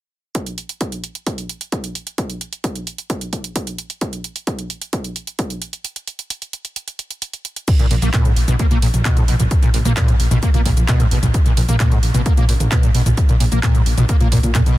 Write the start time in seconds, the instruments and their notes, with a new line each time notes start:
0.35 kick, closed hi-hat
0.46 closed hi-hat
0.58 closed hi-hat
0.69 closed hi-hat
0.81 kick, closed hi-hat
0.92 closed hi-hat
1.04 closed hi-hat
1.15 closed hi-hat
1.27 kick, closed hi-hat
1.38 closed hi-hat
1.49 closed hi-hat
1.61 closed hi-hat
1.72 kick, closed hi-hat
1.84 closed hi-hat
1.95 closed hi-hat
2.07 closed hi-hat
2.18 kick, closed hi-hat
2.30 closed hi-hat
2.41 closed hi-hat
2.53 closed hi-hat
2.64 kick, closed hi-hat
2.75 closed hi-hat
2.87 closed hi-hat
2.98 closed hi-hat
3.10 kick, closed hi-hat
3.21 closed hi-hat
3.33 kick, closed hi-hat
3.44 closed hi-hat
3.56 kick, closed hi-hat
3.67 closed hi-hat
3.78 closed hi-hat
3.90 closed hi-hat
4.01 kick, closed hi-hat
4.13 closed hi-hat
4.24 closed hi-hat
4.36 closed hi-hat
4.47 kick, closed hi-hat
4.59 closed hi-hat
4.70 closed hi-hat
4.82 closed hi-hat
4.93 kick, closed hi-hat
5.04 closed hi-hat
5.16 closed hi-hat
5.27 closed hi-hat
5.39 kick, closed hi-hat
5.50 closed hi-hat
5.62 closed hi-hat
5.73 closed hi-hat
5.85 closed hi-hat
5.96 closed hi-hat
6.07 closed hi-hat
6.19 closed hi-hat
6.30 closed hi-hat
6.42 closed hi-hat
6.53 closed hi-hat
6.65 closed hi-hat
6.76 closed hi-hat
6.88 closed hi-hat
6.99 closed hi-hat
7.11 closed hi-hat
7.22 closed hi-hat
7.33 closed hi-hat
7.45 closed hi-hat
7.56 closed hi-hat
7.68 kick, closed hi-hat, crash, shaker
7.79 acid bass A#2, closed hi-hat, mid tom, shaker
7.91 detuned saw bass A#1, acid bass A#2, open hi-hat
8.02 detuned saw bass A#1, acid bass A#3, closed hi-hat, mid tom, shaker
8.14 acid bass A#2, kick, clap, closed hi-hat, shaker
8.25 acid bass G#2, closed hi-hat, mid tom, shaker
8.36 detuned saw bass A#1, open hi-hat
8.48 detuned saw bass A#1, acid bass B2, closed hi-hat, mid tom, shaker
8.59 acid bass A#3, kick, closed hi-hat, shaker
8.71 detuned saw bass A#2, acid bass A#3, closed hi-hat, mid tom, shaker
8.82 detuned saw bass A#1, acid bass A#2, open hi-hat
8.94 detuned saw bass A#1, closed hi-hat, mid tom, shaker
9.05 acid bass B2, kick, clap, closed hi-hat, shaker
9.17 acid bass G#2, closed hi-hat, mid tom, shaker
9.28 detuned saw bass A#1, acid bass B2, open hi-hat
9.40 detuned saw bass A#1, acid bass A#1, closed hi-hat, mid tom, shaker
9.51 kick, closed hi-hat, shaker
9.63 acid bass A#2, closed hi-hat, mid tom, shaker
9.74 detuned saw bass A#1, acid bass A#2, open hi-hat
9.85 detuned saw bass A#1, acid bass A#3, closed hi-hat, mid tom, shaker
9.97 acid bass A#2, kick, clap, closed hi-hat, shaker
10.08 acid bass G#2, closed hi-hat, mid tom, shaker
10.20 detuned saw bass A#1, open hi-hat
10.31 detuned saw bass A#1, acid bass B2, closed hi-hat, mid tom, shaker
10.43 acid bass A#3, kick, closed hi-hat, shaker
10.54 detuned saw bass A#2, acid bass A#3, closed hi-hat, mid tom, shaker
10.65 detuned saw bass A#1, acid bass A#2, kick, open hi-hat
10.77 detuned saw bass A#1, closed hi-hat, mid tom, shaker
10.88 acid bass B2, kick, clap, closed hi-hat, shaker
11.00 acid bass G#2, closed hi-hat, mid tom, shaker
11.11 detuned saw bass A#1, acid bass B2, open hi-hat
11.23 detuned saw bass A#1, acid bass A#1, closed hi-hat, mid tom, shaker
11.34 kick, closed hi-hat, shaker
11.46 acid bass A#2, closed hi-hat, mid tom, shaker
11.57 detuned saw bass A#1, acid bass A#2, open hi-hat
11.69 detuned saw bass A#1, acid bass A#3, closed hi-hat, mid tom, shaker
11.80 acid bass A#2, kick, clap, closed hi-hat, shaker
11.91 acid bass G#2, closed hi-hat, mid tom, shaker
12.03 detuned saw bass A#1, open hi-hat
12.14 detuned saw bass A#1, acid bass B2, closed hi-hat, mid tom, shaker
12.26 acid bass A#3, kick, closed hi-hat, shaker
12.37 detuned saw bass A#2, acid bass A#3, closed hi-hat, mid tom, shaker
12.49 detuned saw bass A#1, acid bass A#2, open hi-hat
12.60 detuned saw bass A#1, closed hi-hat, mid tom, shaker
12.72 acid bass B2, kick, clap, closed hi-hat, shaker
12.83 acid bass G#2, closed hi-hat, mid tom, shaker
12.95 detuned saw bass A#1, acid bass B2, open hi-hat
13.06 detuned saw bass A#1, acid bass A#1, closed hi-hat, mid tom, shaker
13.17 kick, closed hi-hat, shaker
13.29 acid bass A#2, closed hi-hat, mid tom, shaker
13.40 detuned saw bass A#1, acid bass A#2, open hi-hat
13.52 detuned saw bass A#1, acid bass A#3, closed hi-hat, mid tom, shaker
13.63 acid bass A#2, kick, clap, closed hi-hat, shaker
13.75 acid bass G#2, closed hi-hat, mid tom, shaker
13.86 detuned saw bass A#1, open hi-hat
13.98 detuned saw bass A#1, acid bass B2, closed hi-hat, mid tom, shaker
14.09 acid bass A#3, kick, closed hi-hat, shaker
14.20 detuned saw bass A#2, acid bass A#3, closed hi-hat, mid tom, shaker
14.32 detuned saw bass A#1, acid bass A#2, kick, open hi-hat
14.43 detuned saw bass A#2, closed hi-hat, mid tom, shaker
14.55 acid bass A#2, kick, clap, closed hi-hat, shaker
14.66 acid bass B2, closed hi-hat, mid tom, shaker